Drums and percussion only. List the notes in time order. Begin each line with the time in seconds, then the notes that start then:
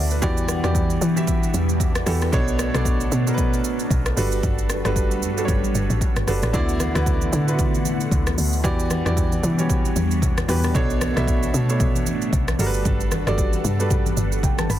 0.11 shaker
0.22 kick, shaker
0.37 shaker
0.48 cross-stick, shaker
0.64 cross-stick, shaker
0.75 kick, shaker
0.90 shaker
1.01 shaker
1.17 shaker
1.27 kick, shaker
1.43 shaker
1.54 shaker
1.69 shaker
1.80 kick, shaker
1.95 cross-stick, shaker
2.07 cross-stick, open hi-hat, shaker
2.21 cross-stick, shaker
2.33 kick, shaker
2.48 shaker
2.59 cross-stick, shaker
2.74 cross-stick, shaker
2.85 kick, shaker
3.00 shaker
3.12 shaker
3.27 shaker
3.38 kick, shaker
3.54 shaker
3.64 shaker
3.79 shaker
3.91 kick, shaker
4.06 cross-stick, shaker
4.17 open hi-hat, shaker
4.32 shaker
4.43 kick, shaker
4.58 shaker
4.69 cross-stick, shaker
4.85 cross-stick, shaker
4.96 kick, shaker
5.11 shaker
5.22 shaker
5.38 shaker
5.48 kick, shaker
5.64 shaker
5.75 shaker
5.90 shaker
6.01 kick, shaker
6.16 cross-stick, shaker
6.28 cross-stick, open hi-hat, shaker
6.42 cross-stick, shaker
6.54 kick, low conga, shaker
6.69 shaker
6.80 cross-stick, high conga, shaker
6.95 cross-stick, high conga, shaker
7.06 kick, shaker
7.21 high conga, shaker
7.33 low conga, shaker
7.48 shaker
7.59 kick, low conga, shaker
7.74 high conga, shaker
7.85 high conga, shaker
8.01 shaker
8.12 kick, low conga, shaker
8.27 cross-stick, high conga, shaker
8.38 open hi-hat, shaker
8.53 shaker
8.64 kick, low conga, shaker
8.79 shaker
8.90 cross-stick, high conga, shaker
9.06 cross-stick, high conga, shaker
9.17 kick, shaker
9.32 high conga, shaker
9.43 low conga, shaker
9.59 shaker
9.70 kick, low conga, shaker
9.85 high conga, shaker
9.96 high conga, shaker
10.11 shaker
10.22 kick, low conga, shaker
10.37 cross-stick, high conga, shaker
10.49 cross-stick, open hi-hat, shaker
10.64 cross-stick, shaker
10.75 kick, low conga, shaker
10.90 shaker
11.01 cross-stick, high conga, shaker
11.16 cross-stick, high conga, shaker
11.28 kick, shaker
11.43 high conga, shaker
11.54 low conga, shaker
11.69 shaker
11.80 kick, low conga, shaker
11.95 high conga, shaker
12.06 high conga, shaker
12.22 shaker
12.33 kick, low conga, shaker
12.48 cross-stick, high conga, shaker
12.59 open hi-hat, shaker
12.74 shaker
12.85 kick, low conga, shaker
13.00 shaker
13.12 cross-stick, high conga, shaker
13.27 cross-stick, high conga, shaker
13.38 kick, shaker
13.53 high conga, shaker
13.64 low conga, shaker
13.80 shaker
13.91 kick, low conga, shaker
14.06 high conga, shaker
14.17 high conga, shaker
14.32 shaker
14.43 kick, low conga, shaker
14.58 cross-stick, high conga, shaker
14.70 cross-stick, open hi-hat, shaker